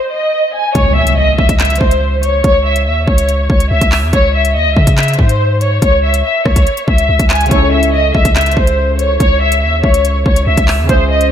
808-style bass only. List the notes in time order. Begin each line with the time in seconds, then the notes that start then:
0.75 C#2
1.38 C#2
1.49 C#2
1.81 C#2
2.44 C#2
2.86 D#2
3.08 C#2
3.50 C#2
3.71 C#2
3.81 C#2
4.03 E2
4.13 C#2
4.55 D#2
4.66 C#2
4.76 C#3
5.19 G#2
5.82 C#2
6.46 C#2
6.88 C#2
7.09 C#2
7.19 C#2
7.51 C#2
8.15 C#2
8.25 C#2
8.57 C#2
9.20 C#2
9.62 D#2
9.84 C#2
10.26 C#2
10.47 C#2
10.57 C#2
10.79 E2
10.89 C#2